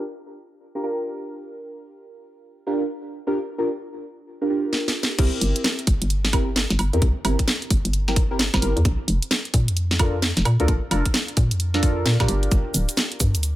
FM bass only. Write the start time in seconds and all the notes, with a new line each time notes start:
5.19 C2
5.41 G1
5.87 G1
6.02 G1
6.70 G1
6.79 G1
6.93 E2
7.02 C2
7.25 G1
7.71 G1
7.85 G1
8.54 G1
8.62 G1
8.77 E2
8.85 A#1
9.08 F1
9.54 A#2
9.68 F2
10.37 F1
10.45 A#2
10.60 D2
10.68 A#1
10.91 F1
11.37 A#2
11.51 F2
12.06 A#2
12.20 A#2
12.29 G1
12.52 G1
12.74 D1
13.20 G2
13.35 D2